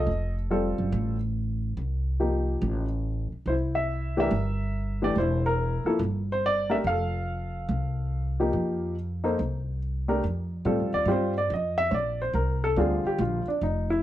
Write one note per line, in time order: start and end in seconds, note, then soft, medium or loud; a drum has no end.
0.00 0.50 A4 medium
0.00 0.34 D#5 medium
0.06 0.73 F1 medium
0.51 1.15 G3 medium
0.51 1.15 C4 medium
0.51 1.15 F4 medium
0.51 1.16 A4 medium
0.78 0.92 F#1 medium
0.92 1.74 A1 medium
1.77 2.58 C2 medium
2.20 2.84 F3 medium
2.20 2.85 A#3 soft
2.20 2.85 D#4 soft
2.20 2.85 G4 medium
2.62 3.28 A1 medium
3.32 muted upright bass stroke soft
3.46 4.27 C2 medium
3.46 4.29 E4 medium
3.46 3.54 C5 medium
3.75 4.18 E5 medium
4.17 4.30 E3 medium
4.17 4.30 A3 medium
4.17 4.30 D4 medium
4.17 4.31 G4 medium
4.17 5.06 E5 medium
4.22 5.00 A#4 medium
4.31 5.12 G1 medium
5.02 5.15 E3 medium
5.02 5.15 A3 medium
5.02 5.15 D4 medium
5.02 5.16 G4 medium
5.02 5.18 D5 medium
5.15 5.82 E1 medium
5.15 5.46 C5 medium
5.20 5.85 E4 medium
5.46 5.89 A#4 medium
5.84 6.00 F3 medium
5.84 6.00 A#3 medium
5.84 6.00 E4 medium
5.84 5.99 A4 medium
5.84 muted upright bass stroke soft
5.99 6.81 G1 medium
6.32 6.46 C5 medium
6.46 6.73 D5 medium
6.69 6.83 A3 medium
6.69 6.83 D4 medium
6.69 6.83 G4 medium
6.69 6.84 A#4 medium
6.69 6.76 E5 medium
6.84 7.66 F1 medium
6.84 9.78 F5 medium
6.89 9.23 A4 medium
7.69 8.50 C2 medium
8.40 8.94 F3 medium
8.40 8.94 A#3 medium
8.40 8.94 D#4 medium
8.40 8.94 G4 medium
8.53 9.34 F2 medium
9.24 9.38 A#3 medium
9.24 9.37 D#4 medium
9.24 9.38 A4 medium
9.24 9.38 C5 medium
9.39 10.20 C2 medium
10.08 10.22 A3 medium
10.08 10.22 D4 medium
10.08 10.22 G4 medium
10.08 10.22 A#4 medium
10.24 10.64 F2 medium
10.65 10.81 A2 medium
10.65 11.06 G3 medium
10.65 11.06 C4 medium
10.65 11.06 F4 medium
10.65 11.07 A4 medium
10.80 10.92 F2 medium
10.93 11.05 D#2 medium
10.93 11.08 D5 medium
11.05 11.48 G2 medium
11.05 11.33 G3 medium
11.05 11.33 C4 medium
11.05 11.33 F4 medium
11.05 11.33 G4 medium
11.11 11.37 C5 medium
11.38 11.51 D5 medium
11.50 11.90 F2 medium
11.50 11.79 D#5 medium
11.78 11.92 E5 loud
11.91 12.33 A#1 medium
11.91 11.94 C#5 medium
11.91 12.20 D5 medium
12.22 12.35 C5 medium
12.33 12.75 C2 medium
12.33 12.61 A#4 medium
12.64 12.77 A4 medium
12.76 13.02 D2 medium
12.76 13.41 D3 medium
12.76 13.41 G3 medium
12.76 13.41 C4 medium
12.76 13.19 F4 medium
12.76 13.05 G#4 medium
13.05 13.20 G4 medium
13.05 muted upright bass stroke soft
13.18 13.44 A#1 medium
13.18 13.47 F4 medium
13.47 13.62 D4 medium
13.47 muted upright bass stroke soft
13.61 14.02 F1 medium
13.61 13.89 D#4 medium
13.90 14.03 E4 medium